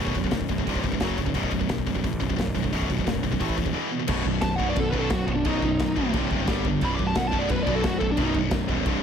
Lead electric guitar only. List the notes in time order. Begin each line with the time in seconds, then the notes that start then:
4.42 A5
4.55 F#5
4.70 D5
4.79 A4
4.91 B4
5.00 A4
5.13 F#4
5.35 D4
5.46 D#4
6.85 B5
6.95 D6
7.07 A5
7.16 F#5
7.28 A5
7.39 D5
7.50 B4
7.63 D5
7.75 A4
7.86 F#4
7.98 A4
8.12 D4
8.23 D#4